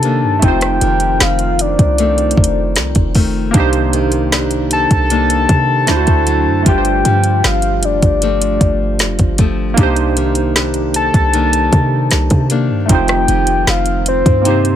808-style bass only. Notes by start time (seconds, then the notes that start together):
Already playing: C3
0.23 G2
0.43 F1
0.81 F1
1.21 F1
1.79 C2
2.37 F1
2.77 C2
2.96 F1
3.54 C2
4.91 C2
5.49 C3
5.88 D2
6.08 D2
6.46 F#2
6.66 G1
7.05 G2
7.44 G1
7.83 F1
8.02 G1
8.61 G1
9.00 F1
9.19 G1
9.78 C2
11.14 C2
11.73 C3
12.12 C2
12.31 C3
12.70 G2
12.90 F1
13.28 F1
13.67 F1
14.26 G2